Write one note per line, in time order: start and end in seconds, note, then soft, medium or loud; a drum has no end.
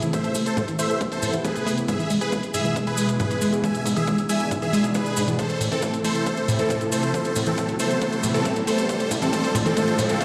0.00 0.12 E3 medium
0.00 closed hi-hat medium
0.00 riser medium
0.00 maracas soft
0.13 0.29 C3 medium
0.13 0.29 E3 medium
0.13 0.23 A3 loud
0.13 0.29 B3 medium
0.13 0.29 E4 medium
0.13 0.33 C5 medium
0.13 0.33 E5 loud
0.13 kick loud
0.13 closed hi-hat medium
0.13 maracas soft
0.24 0.34 A4 medium
0.24 closed hi-hat medium
0.24 maracas soft
0.35 0.45 A3 medium
0.35 open hi-hat loud
0.35 maracas loud
0.46 0.66 A4 medium
0.46 0.66 C5 medium
0.46 closed hi-hat medium
0.46 maracas soft
0.57 0.61 A2 loud
0.57 0.72 C3 medium
0.57 0.72 E3 medium
0.57 0.72 B3 medium
0.57 0.72 E4 medium
0.57 kick loud
0.57 closed hi-hat medium
0.57 maracas soft
0.68 0.78 E3 medium
0.68 closed hi-hat medium
0.68 maracas soft
0.79 0.94 C3 medium
0.79 0.94 E3 medium
0.79 0.89 A3 medium
0.79 0.94 B3 medium
0.79 0.94 E4 medium
0.79 0.99 C5 medium
0.79 0.99 E5 medium
0.79 open hi-hat loud
0.79 maracas loud
0.90 1.00 A4 medium
0.90 closed hi-hat medium
0.90 maracas soft
1.01 1.16 C3 medium
1.01 1.16 E3 medium
1.01 1.11 A3 medium
1.01 1.16 B3 medium
1.01 1.16 E4 medium
1.01 kick loud
1.01 closed hi-hat medium
1.01 maracas soft
1.12 1.32 A4 medium
1.12 1.32 C5 loud
1.12 closed hi-hat medium
1.12 maracas soft
1.22 1.27 A2 loud
1.22 1.38 C3 medium
1.22 1.38 E3 medium
1.22 1.38 B3 medium
1.22 1.38 E4 medium
1.22 open hi-hat loud
1.22 maracas medium
1.33 1.44 E3 medium
1.33 closed hi-hat medium
1.33 maracas soft
1.44 1.60 C3 medium
1.44 1.60 E3 medium
1.44 1.54 A3 loud
1.44 1.60 B3 medium
1.44 1.60 E4 medium
1.44 1.71 G#4 medium
1.44 1.71 B4 medium
1.44 kick loud
1.44 closed hi-hat medium
1.44 maracas medium
1.55 1.65 A4 medium
1.55 closed hi-hat medium
1.55 maracas soft
1.66 1.82 C3 medium
1.66 1.82 E3 medium
1.66 1.76 A3 medium
1.66 1.82 B3 medium
1.66 1.82 E4 medium
1.66 open hi-hat loud
1.66 maracas medium
1.77 closed hi-hat medium
1.77 maracas soft
1.88 1.92 G#2 loud
1.88 2.04 B2 medium
1.88 2.04 E3 medium
1.88 2.04 G#3 loud
1.88 2.04 E4 medium
1.88 2.08 G#4 medium
1.88 2.08 E5 loud
1.88 kick loud
1.88 closed hi-hat medium
1.88 maracas medium
1.99 2.09 E3 medium
1.99 closed hi-hat medium
1.99 maracas soft
2.10 2.20 G#3 loud
2.10 open hi-hat loud
2.10 maracas medium
2.21 2.31 G#4 medium
2.21 2.41 G#4 medium
2.21 2.41 B4 loud
2.21 closed hi-hat soft
2.21 maracas soft
2.32 2.48 B2 medium
2.32 2.48 E3 medium
2.32 2.42 G#3 medium
2.32 2.48 G#3 medium
2.32 2.48 E4 medium
2.32 kick loud
2.32 closed hi-hat medium
2.32 maracas medium
2.43 closed hi-hat medium
2.43 maracas soft
2.54 2.58 G#2 medium
2.54 2.70 B2 medium
2.54 2.70 E3 medium
2.54 2.70 G#3 medium
2.54 2.70 E4 medium
2.54 2.74 G#4 medium
2.54 2.74 E5 medium
2.54 open hi-hat loud
2.54 maracas medium
2.65 2.75 E3 medium
2.65 closed hi-hat medium
2.65 maracas soft
2.76 2.92 B2 medium
2.76 2.92 E3 medium
2.76 2.86 G#3 loud
2.76 2.92 G#3 medium
2.76 2.92 E4 medium
2.76 kick loud
2.76 closed hi-hat medium
2.76 maracas medium
2.87 2.97 G#4 medium
2.87 3.07 G#4 medium
2.87 3.07 B4 loud
2.87 closed hi-hat soft
2.87 maracas soft
2.97 3.13 B2 medium
2.97 3.13 E3 medium
2.97 3.08 G#3 medium
2.97 3.13 G#3 medium
2.97 3.13 E4 medium
2.97 open hi-hat loud
2.97 maracas loud
3.09 closed hi-hat soft
3.09 maracas soft
3.20 3.24 G#2 loud
3.20 3.35 B2 medium
3.20 3.35 E3 medium
3.20 3.35 G#3 medium
3.20 3.35 E4 medium
3.20 3.46 G#4 medium
3.20 3.46 B4 loud
3.20 kick loud
3.20 closed hi-hat medium
3.20 maracas medium
3.31 3.41 E3 medium
3.31 closed hi-hat soft
3.31 maracas soft
3.41 3.57 B2 medium
3.41 3.57 E3 medium
3.41 3.52 G#3 loud
3.41 3.57 G#3 medium
3.41 3.57 E4 medium
3.41 open hi-hat loud
3.41 maracas loud
3.53 3.63 G#4 medium
3.53 closed hi-hat medium
3.53 maracas soft
3.64 3.79 B2 medium
3.64 3.79 E3 medium
3.64 3.73 G#3 medium
3.64 3.79 G#3 medium
3.64 3.79 D4 medium
3.64 3.83 E5 medium
3.64 3.83 G#5 loud
3.64 kick loud
3.64 closed hi-hat medium
3.64 maracas medium
3.75 closed hi-hat medium
3.75 maracas soft
3.86 3.89 G#2 loud
3.86 open hi-hat loud
3.86 maracas loud
3.96 4.06 E3 medium
3.96 4.16 G#4 medium
3.96 4.16 E5 medium
3.96 closed hi-hat soft
3.96 maracas soft
4.07 4.23 B2 medium
4.07 4.23 E3 medium
4.07 4.17 G#3 loud
4.07 4.23 G#3 medium
4.07 4.23 D4 medium
4.07 kick loud
4.07 closed hi-hat medium
4.07 maracas medium
4.18 4.28 G#4 medium
4.18 closed hi-hat soft
4.18 maracas soft
4.29 4.45 B2 medium
4.29 4.45 E3 medium
4.29 4.39 G#3 medium
4.29 4.45 G#3 medium
4.29 4.45 D4 medium
4.29 4.49 E5 medium
4.29 4.49 G#5 medium
4.29 open hi-hat loud
4.29 maracas loud
4.40 closed hi-hat medium
4.40 maracas soft
4.51 4.55 G#2 loud
4.51 4.67 B2 medium
4.51 4.67 E3 medium
4.51 4.67 G#3 medium
4.51 4.67 D4 medium
4.51 kick loud
4.51 closed hi-hat medium
4.51 maracas medium
4.62 4.72 E3 medium
4.62 4.82 G#4 medium
4.62 4.82 E5 loud
4.62 closed hi-hat medium
4.62 maracas soft
4.73 4.88 B2 medium
4.73 4.88 E3 medium
4.73 4.88 G#3 medium
4.73 4.83 G#3 loud
4.73 4.88 D4 medium
4.73 open hi-hat loud
4.73 maracas medium
4.84 4.94 G#4 medium
4.84 closed hi-hat soft
4.84 maracas soft
4.94 5.10 B2 medium
4.94 5.10 E3 medium
4.94 5.10 G#3 medium
4.94 5.05 G#3 medium
4.94 5.10 D4 medium
4.94 5.21 G#4 medium
4.94 5.21 B4 medium
4.94 kick loud
4.94 closed hi-hat medium
4.94 maracas soft
5.06 closed hi-hat soft
5.06 maracas soft
5.16 5.21 G#2 loud
5.16 5.32 B2 medium
5.16 5.32 E3 medium
5.16 5.32 G#3 medium
5.16 5.32 D4 medium
5.16 open hi-hat loud
5.16 maracas loud
5.28 5.38 E3 medium
5.28 closed hi-hat medium
5.28 maracas soft
5.39 5.54 C3 medium
5.39 5.54 E3 loud
5.39 5.49 A3 medium
5.39 5.54 A3 loud
5.39 5.54 E4 loud
5.39 5.59 A4 medium
5.39 5.59 C5 medium
5.39 kick loud
5.39 closed hi-hat medium
5.39 maracas soft
5.49 closed hi-hat medium
5.49 maracas soft
5.61 5.65 A2 medium
5.61 open hi-hat loud
5.61 maracas loud
5.72 5.82 E3 medium
5.72 5.91 C4 medium
5.72 5.91 A4 medium
5.72 closed hi-hat soft
5.72 maracas soft
5.82 5.98 C3 medium
5.82 5.98 E3 medium
5.82 5.98 A3 medium
5.82 5.93 A3 medium
5.82 5.98 E4 medium
5.82 kick loud
5.82 closed hi-hat medium
5.82 maracas medium
5.94 6.03 A4 medium
5.94 closed hi-hat medium
5.94 maracas soft
6.04 6.20 C3 medium
6.04 6.20 E3 medium
6.04 6.20 A3 medium
6.04 6.14 A3 medium
6.04 6.20 E4 medium
6.04 6.24 A4 medium
6.04 6.24 C5 medium
6.04 open hi-hat loud
6.04 maracas medium
6.15 closed hi-hat medium
6.15 maracas soft
6.26 6.42 C3 medium
6.26 6.42 E3 medium
6.26 6.42 A3 medium
6.26 6.36 A3 medium
6.26 6.42 E4 medium
6.26 6.46 A4 medium
6.26 6.46 C5 loud
6.26 kick loud
6.26 closed hi-hat medium
6.26 maracas medium
6.37 closed hi-hat soft
6.37 maracas soft
6.48 6.52 A2 loud
6.48 6.64 C3 medium
6.48 6.64 E3 medium
6.48 6.64 A3 medium
6.48 6.64 E4 medium
6.48 open hi-hat loud
6.48 maracas loud
6.59 6.69 E3 medium
6.59 6.79 C4 medium
6.59 6.79 A4 medium
6.59 closed hi-hat soft
6.59 maracas soft
6.70 6.86 C3 medium
6.70 6.86 E3 medium
6.70 6.80 A3 medium
6.70 6.86 A3 medium
6.70 6.86 E4 medium
6.70 kick loud
6.70 closed hi-hat medium
6.70 maracas soft
6.81 6.91 A4 medium
6.81 closed hi-hat medium
6.81 maracas soft
6.92 7.07 C3 medium
6.92 7.08 E3 medium
6.92 7.02 A3 medium
6.92 7.08 A3 medium
6.92 7.07 E4 medium
6.92 7.12 A4 medium
6.92 7.12 C5 medium
6.92 open hi-hat loud
6.92 maracas loud
7.03 closed hi-hat medium
7.03 maracas soft
7.14 7.29 C3 medium
7.14 7.29 E3 medium
7.14 7.24 A3 medium
7.14 7.29 B3 loud
7.14 7.29 E4 medium
7.14 7.34 A4 medium
7.14 7.34 C5 medium
7.14 kick loud
7.14 closed hi-hat medium
7.14 maracas soft
7.25 closed hi-hat medium
7.25 maracas soft
7.36 7.40 A2 loud
7.36 open hi-hat loud
7.36 maracas medium
7.46 7.57 E3 medium
7.46 7.67 C4 medium
7.46 7.67 A4 medium
7.46 closed hi-hat medium
7.46 maracas soft
7.58 7.73 C3 medium
7.58 7.73 E3 medium
7.58 7.68 A3 medium
7.58 7.73 B3 medium
7.58 7.73 E4 medium
7.58 kick loud
7.58 closed hi-hat medium
7.58 maracas soft
7.68 7.79 A4 medium
7.68 closed hi-hat medium
7.68 maracas soft
7.79 7.95 C3 medium
7.79 7.95 E3 medium
7.79 7.90 A3 medium
7.79 7.95 B3 medium
7.79 7.95 E4 medium
7.79 7.99 A4 medium
7.79 8.00 C5 medium
7.79 open hi-hat loud
7.79 maracas medium
7.91 closed hi-hat medium
7.91 maracas soft
8.01 8.17 C3 medium
8.01 8.17 E3 medium
8.01 8.11 A3 medium
8.01 8.17 B3 medium
8.01 8.17 E4 medium
8.01 8.21 A4 medium
8.01 8.21 C5 loud
8.01 kick loud
8.01 closed hi-hat medium
8.01 maracas medium
8.12 closed hi-hat medium
8.12 maracas soft
8.23 8.27 A2 loud
8.23 8.39 C3 medium
8.23 8.39 E3 medium
8.23 8.39 B3 medium
8.23 8.39 E4 medium
8.23 open hi-hat loud
8.23 maracas loud
8.34 8.44 E3 medium
8.34 8.54 C4 medium
8.34 8.54 A4 loud
8.34 closed hi-hat medium
8.34 maracas soft
8.45 8.61 C3 medium
8.45 8.61 E3 medium
8.45 8.55 A3 loud
8.45 8.61 B3 medium
8.45 8.61 E4 medium
8.45 kick loud
8.45 closed hi-hat loud
8.45 maracas soft
8.56 8.66 A4 medium
8.56 closed hi-hat medium
8.56 maracas soft
8.67 8.83 C3 medium
8.67 8.83 E3 medium
8.67 8.77 A3 medium
8.67 8.83 B3 loud
8.67 8.83 E4 medium
8.67 8.87 A4 medium
8.67 8.87 C5 medium
8.67 open hi-hat loud
8.67 maracas medium
8.78 closed hi-hat medium
8.78 maracas soft
8.89 9.05 D3 medium
8.89 9.05 F3 loud
8.89 8.99 A3 medium
8.89 9.05 A3 medium
8.89 9.05 F4 medium
8.89 9.09 A4 medium
8.89 9.09 C5 medium
8.89 kick loud
8.89 closed hi-hat medium
8.89 maracas soft
9.00 closed hi-hat medium
9.00 maracas soft
9.11 9.15 A2 loud
9.11 kick loud
9.11 open hi-hat loud
9.11 maracas medium
9.22 9.31 E3 medium
9.22 9.31 C4 medium
9.22 9.31 A4 medium
9.22 closed hi-hat medium
9.22 maracas soft
9.33 9.48 D3 medium
9.33 9.48 F3 medium
9.33 9.43 A3 medium
9.33 9.48 A3 medium
9.33 9.48 F4 medium
9.33 9.53 A4 medium
9.33 9.53 C5 loud
9.33 kick loud
9.33 closed hi-hat medium
9.33 maracas soft
9.44 closed hi-hat medium
9.44 maracas soft
9.55 9.59 A2 medium
9.55 9.70 D3 medium
9.55 9.70 F3 medium
9.55 9.70 A3 medium
9.55 9.70 F4 medium
9.55 kick loud
9.55 open hi-hat loud
9.55 maracas medium
9.66 9.75 E3 medium
9.66 9.75 C4 medium
9.66 9.75 A4 medium
9.66 closed hi-hat medium
9.66 maracas soft
9.77 9.92 D3 medium
9.77 9.92 F3 medium
9.77 9.92 A3 medium
9.77 9.87 A3 medium
9.77 9.92 F4 medium
9.77 9.97 A4 medium
9.77 9.97 C5 loud
9.77 kick loud
9.77 closed hi-hat loud
9.77 maracas medium
9.88 closed hi-hat medium
9.88 maracas soft
9.99 10.03 A2 loud
9.99 10.14 D3 medium
9.99 10.14 F3 medium
9.99 10.14 A3 medium
9.99 10.14 F4 medium
9.99 kick loud
9.99 open hi-hat loud
9.99 maracas medium
10.09 10.19 E3 medium
10.09 10.19 C4 medium
10.09 10.19 A4 medium
10.09 closed hi-hat medium
10.09 maracas soft
10.21 10.25 D3 medium
10.21 10.25 F3 medium
10.21 10.25 A3 medium
10.21 10.25 F4 medium
10.21 10.25 A4 medium
10.21 10.25 C5 loud
10.21 kick loud
10.21 closed hi-hat loud
10.21 maracas soft